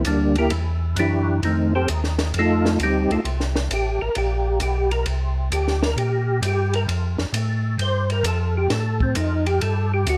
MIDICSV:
0, 0, Header, 1, 4, 480
1, 0, Start_track
1, 0, Tempo, 454890
1, 1506, Time_signature, 4, 2, 24, 8
1, 10737, End_track
2, 0, Start_track
2, 0, Title_t, "Tonewheel organ"
2, 0, Program_c, 0, 16
2, 73, Note_on_c, 0, 62, 66
2, 74, Note_on_c, 0, 55, 50
2, 75, Note_on_c, 0, 50, 54
2, 76, Note_on_c, 0, 58, 52
2, 384, Note_off_c, 0, 62, 0
2, 385, Note_off_c, 0, 50, 0
2, 385, Note_off_c, 0, 55, 0
2, 386, Note_off_c, 0, 58, 0
2, 404, Note_on_c, 0, 67, 78
2, 406, Note_on_c, 0, 70, 91
2, 408, Note_on_c, 0, 58, 73
2, 409, Note_on_c, 0, 64, 73
2, 548, Note_off_c, 0, 67, 0
2, 549, Note_off_c, 0, 70, 0
2, 550, Note_off_c, 0, 58, 0
2, 551, Note_off_c, 0, 64, 0
2, 1045, Note_on_c, 0, 67, 63
2, 1049, Note_on_c, 0, 52, 54
2, 1049, Note_on_c, 0, 62, 54
2, 1054, Note_on_c, 0, 64, 57
2, 1483, Note_off_c, 0, 67, 0
2, 1485, Note_off_c, 0, 52, 0
2, 1485, Note_off_c, 0, 62, 0
2, 1487, Note_off_c, 0, 64, 0
2, 1524, Note_on_c, 0, 63, 47
2, 1527, Note_on_c, 0, 51, 39
2, 1530, Note_on_c, 0, 60, 38
2, 1533, Note_on_c, 0, 57, 37
2, 1830, Note_off_c, 0, 63, 0
2, 1831, Note_off_c, 0, 51, 0
2, 1833, Note_off_c, 0, 60, 0
2, 1835, Note_off_c, 0, 57, 0
2, 1848, Note_on_c, 0, 60, 75
2, 1848, Note_on_c, 0, 69, 78
2, 1851, Note_on_c, 0, 72, 96
2, 1853, Note_on_c, 0, 67, 72
2, 1991, Note_off_c, 0, 60, 0
2, 1991, Note_off_c, 0, 69, 0
2, 1992, Note_off_c, 0, 72, 0
2, 1993, Note_off_c, 0, 67, 0
2, 2514, Note_on_c, 0, 69, 71
2, 2521, Note_on_c, 0, 63, 59
2, 2522, Note_on_c, 0, 57, 54
2, 2525, Note_on_c, 0, 65, 56
2, 2938, Note_off_c, 0, 69, 0
2, 2942, Note_off_c, 0, 63, 0
2, 2943, Note_off_c, 0, 57, 0
2, 2944, Note_off_c, 0, 65, 0
2, 2988, Note_on_c, 0, 60, 55
2, 2988, Note_on_c, 0, 67, 70
2, 2990, Note_on_c, 0, 63, 54
2, 2998, Note_on_c, 0, 55, 55
2, 3278, Note_off_c, 0, 63, 0
2, 3283, Note_off_c, 0, 60, 0
2, 3283, Note_off_c, 0, 67, 0
2, 3288, Note_off_c, 0, 55, 0
2, 3290, Note_on_c, 0, 63, 67
2, 3291, Note_on_c, 0, 57, 68
2, 3292, Note_on_c, 0, 69, 85
2, 3297, Note_on_c, 0, 65, 67
2, 3378, Note_off_c, 0, 57, 0
2, 3378, Note_off_c, 0, 63, 0
2, 3379, Note_off_c, 0, 69, 0
2, 3383, Note_off_c, 0, 65, 0
2, 3938, Note_on_c, 0, 67, 71
2, 4237, Note_off_c, 0, 67, 0
2, 4237, Note_on_c, 0, 70, 101
2, 4385, Note_off_c, 0, 70, 0
2, 4407, Note_on_c, 0, 67, 64
2, 4843, Note_off_c, 0, 67, 0
2, 4879, Note_on_c, 0, 67, 61
2, 5186, Note_on_c, 0, 70, 95
2, 5187, Note_off_c, 0, 67, 0
2, 5339, Note_off_c, 0, 70, 0
2, 5835, Note_on_c, 0, 67, 55
2, 6145, Note_off_c, 0, 67, 0
2, 6150, Note_on_c, 0, 70, 92
2, 6301, Note_off_c, 0, 70, 0
2, 6306, Note_on_c, 0, 67, 63
2, 6752, Note_off_c, 0, 67, 0
2, 6817, Note_on_c, 0, 67, 72
2, 7116, Note_off_c, 0, 67, 0
2, 7127, Note_on_c, 0, 70, 82
2, 7215, Note_off_c, 0, 70, 0
2, 8249, Note_on_c, 0, 72, 76
2, 8552, Note_off_c, 0, 72, 0
2, 8569, Note_on_c, 0, 70, 88
2, 8710, Note_off_c, 0, 70, 0
2, 8719, Note_on_c, 0, 69, 75
2, 9027, Note_off_c, 0, 69, 0
2, 9046, Note_on_c, 0, 67, 80
2, 9189, Note_off_c, 0, 67, 0
2, 9193, Note_on_c, 0, 69, 72
2, 9504, Note_off_c, 0, 69, 0
2, 9524, Note_on_c, 0, 60, 64
2, 9666, Note_on_c, 0, 63, 64
2, 9668, Note_off_c, 0, 60, 0
2, 9981, Note_off_c, 0, 63, 0
2, 9986, Note_on_c, 0, 67, 94
2, 10140, Note_off_c, 0, 67, 0
2, 10155, Note_on_c, 0, 69, 73
2, 10466, Note_off_c, 0, 69, 0
2, 10485, Note_on_c, 0, 67, 90
2, 10630, Note_off_c, 0, 67, 0
2, 10653, Note_on_c, 0, 66, 79
2, 10737, Note_off_c, 0, 66, 0
2, 10737, End_track
3, 0, Start_track
3, 0, Title_t, "Tonewheel organ"
3, 0, Program_c, 1, 16
3, 61, Note_on_c, 1, 38, 81
3, 529, Note_off_c, 1, 38, 0
3, 539, Note_on_c, 1, 40, 81
3, 1008, Note_off_c, 1, 40, 0
3, 1016, Note_on_c, 1, 42, 81
3, 1487, Note_off_c, 1, 42, 0
3, 1504, Note_on_c, 1, 41, 81
3, 1971, Note_off_c, 1, 41, 0
3, 1995, Note_on_c, 1, 39, 78
3, 2456, Note_off_c, 1, 39, 0
3, 2471, Note_on_c, 1, 41, 74
3, 2934, Note_off_c, 1, 41, 0
3, 2945, Note_on_c, 1, 38, 79
3, 3247, Note_off_c, 1, 38, 0
3, 3274, Note_on_c, 1, 38, 38
3, 3351, Note_off_c, 1, 38, 0
3, 3426, Note_on_c, 1, 36, 75
3, 3892, Note_off_c, 1, 36, 0
3, 3911, Note_on_c, 1, 33, 71
3, 4210, Note_off_c, 1, 33, 0
3, 4242, Note_on_c, 1, 33, 39
3, 4317, Note_off_c, 1, 33, 0
3, 4394, Note_on_c, 1, 34, 80
3, 4856, Note_off_c, 1, 34, 0
3, 4869, Note_on_c, 1, 35, 83
3, 5333, Note_off_c, 1, 35, 0
3, 5342, Note_on_c, 1, 36, 78
3, 5809, Note_off_c, 1, 36, 0
3, 5823, Note_on_c, 1, 38, 73
3, 6289, Note_off_c, 1, 38, 0
3, 6294, Note_on_c, 1, 46, 73
3, 6765, Note_off_c, 1, 46, 0
3, 6778, Note_on_c, 1, 43, 81
3, 7247, Note_off_c, 1, 43, 0
3, 7264, Note_on_c, 1, 41, 70
3, 7566, Note_off_c, 1, 41, 0
3, 7580, Note_on_c, 1, 41, 37
3, 7660, Note_off_c, 1, 41, 0
3, 7731, Note_on_c, 1, 45, 80
3, 8203, Note_off_c, 1, 45, 0
3, 8214, Note_on_c, 1, 43, 72
3, 8685, Note_off_c, 1, 43, 0
3, 8687, Note_on_c, 1, 41, 78
3, 9162, Note_off_c, 1, 41, 0
3, 9182, Note_on_c, 1, 45, 75
3, 9650, Note_off_c, 1, 45, 0
3, 9670, Note_on_c, 1, 41, 71
3, 10135, Note_off_c, 1, 41, 0
3, 10153, Note_on_c, 1, 43, 82
3, 10617, Note_off_c, 1, 43, 0
3, 10626, Note_on_c, 1, 38, 85
3, 10737, Note_off_c, 1, 38, 0
3, 10737, End_track
4, 0, Start_track
4, 0, Title_t, "Drums"
4, 49, Note_on_c, 9, 44, 54
4, 49, Note_on_c, 9, 51, 63
4, 155, Note_off_c, 9, 44, 0
4, 155, Note_off_c, 9, 51, 0
4, 375, Note_on_c, 9, 51, 44
4, 480, Note_off_c, 9, 51, 0
4, 530, Note_on_c, 9, 51, 56
4, 636, Note_off_c, 9, 51, 0
4, 1017, Note_on_c, 9, 44, 56
4, 1017, Note_on_c, 9, 51, 60
4, 1123, Note_off_c, 9, 44, 0
4, 1123, Note_off_c, 9, 51, 0
4, 1509, Note_on_c, 9, 51, 48
4, 1614, Note_off_c, 9, 51, 0
4, 1986, Note_on_c, 9, 44, 59
4, 1986, Note_on_c, 9, 51, 64
4, 2091, Note_off_c, 9, 44, 0
4, 2091, Note_off_c, 9, 51, 0
4, 2150, Note_on_c, 9, 38, 26
4, 2255, Note_off_c, 9, 38, 0
4, 2306, Note_on_c, 9, 38, 41
4, 2308, Note_on_c, 9, 51, 41
4, 2411, Note_off_c, 9, 38, 0
4, 2414, Note_off_c, 9, 51, 0
4, 2468, Note_on_c, 9, 51, 54
4, 2574, Note_off_c, 9, 51, 0
4, 2800, Note_on_c, 9, 38, 48
4, 2905, Note_off_c, 9, 38, 0
4, 2950, Note_on_c, 9, 44, 52
4, 2950, Note_on_c, 9, 51, 55
4, 3056, Note_off_c, 9, 44, 0
4, 3056, Note_off_c, 9, 51, 0
4, 3279, Note_on_c, 9, 51, 43
4, 3384, Note_off_c, 9, 51, 0
4, 3432, Note_on_c, 9, 51, 51
4, 3537, Note_off_c, 9, 51, 0
4, 3592, Note_on_c, 9, 38, 29
4, 3697, Note_off_c, 9, 38, 0
4, 3751, Note_on_c, 9, 38, 42
4, 3857, Note_off_c, 9, 38, 0
4, 3912, Note_on_c, 9, 44, 47
4, 3912, Note_on_c, 9, 51, 65
4, 4018, Note_off_c, 9, 44, 0
4, 4018, Note_off_c, 9, 51, 0
4, 4381, Note_on_c, 9, 51, 58
4, 4486, Note_off_c, 9, 51, 0
4, 4852, Note_on_c, 9, 44, 50
4, 4852, Note_on_c, 9, 51, 57
4, 4958, Note_off_c, 9, 44, 0
4, 4958, Note_off_c, 9, 51, 0
4, 5184, Note_on_c, 9, 51, 39
4, 5289, Note_off_c, 9, 51, 0
4, 5336, Note_on_c, 9, 51, 56
4, 5442, Note_off_c, 9, 51, 0
4, 5823, Note_on_c, 9, 44, 47
4, 5823, Note_on_c, 9, 51, 59
4, 5928, Note_off_c, 9, 44, 0
4, 5928, Note_off_c, 9, 51, 0
4, 5990, Note_on_c, 9, 38, 26
4, 6095, Note_off_c, 9, 38, 0
4, 6147, Note_on_c, 9, 38, 42
4, 6253, Note_off_c, 9, 38, 0
4, 6306, Note_on_c, 9, 51, 52
4, 6412, Note_off_c, 9, 51, 0
4, 6781, Note_on_c, 9, 44, 52
4, 6781, Note_on_c, 9, 51, 69
4, 6887, Note_off_c, 9, 44, 0
4, 6887, Note_off_c, 9, 51, 0
4, 7107, Note_on_c, 9, 51, 43
4, 7212, Note_off_c, 9, 51, 0
4, 7269, Note_on_c, 9, 51, 55
4, 7374, Note_off_c, 9, 51, 0
4, 7581, Note_on_c, 9, 38, 33
4, 7687, Note_off_c, 9, 38, 0
4, 7743, Note_on_c, 9, 44, 48
4, 7743, Note_on_c, 9, 51, 62
4, 7849, Note_off_c, 9, 44, 0
4, 7849, Note_off_c, 9, 51, 0
4, 8222, Note_on_c, 9, 51, 54
4, 8327, Note_off_c, 9, 51, 0
4, 8544, Note_on_c, 9, 51, 43
4, 8650, Note_off_c, 9, 51, 0
4, 8699, Note_on_c, 9, 44, 50
4, 8699, Note_on_c, 9, 51, 66
4, 8804, Note_off_c, 9, 44, 0
4, 8804, Note_off_c, 9, 51, 0
4, 9182, Note_on_c, 9, 38, 38
4, 9182, Note_on_c, 9, 51, 55
4, 9287, Note_off_c, 9, 38, 0
4, 9287, Note_off_c, 9, 51, 0
4, 9501, Note_on_c, 9, 36, 52
4, 9607, Note_off_c, 9, 36, 0
4, 9656, Note_on_c, 9, 44, 53
4, 9656, Note_on_c, 9, 51, 66
4, 9762, Note_off_c, 9, 44, 0
4, 9762, Note_off_c, 9, 51, 0
4, 9986, Note_on_c, 9, 51, 44
4, 10092, Note_off_c, 9, 51, 0
4, 10144, Note_on_c, 9, 51, 58
4, 10250, Note_off_c, 9, 51, 0
4, 10621, Note_on_c, 9, 44, 57
4, 10621, Note_on_c, 9, 51, 60
4, 10727, Note_off_c, 9, 44, 0
4, 10727, Note_off_c, 9, 51, 0
4, 10737, End_track
0, 0, End_of_file